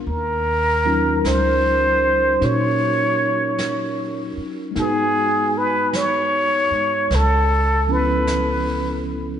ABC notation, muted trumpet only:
X:1
M:4/4
L:1/8
Q:"Swing" 1/4=51
K:Eblyd
V:1 name="Muted trumpet"
B2 c2 _d3 z | _A _c _d2 =A c2 z |]